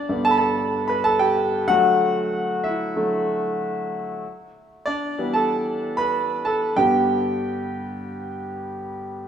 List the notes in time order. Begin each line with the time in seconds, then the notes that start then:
Already playing: D4 D5
0.09 G2 D3 B3
0.25 A4 A5
0.31 B5
0.38 A4 A5
0.88 B4 B5
1.04 A4 A5
1.19 G4 G5
1.67 D3 F#3 A3 F#4 F#5
2.64 E4 E5
2.96 D3 F#3 A3
4.86 D4 D5
5.18 E3 G3 B3
5.34 A4 A5
5.97 B4 B5
6.45 A4 A5
6.77 G2 D3 B3 G4 G5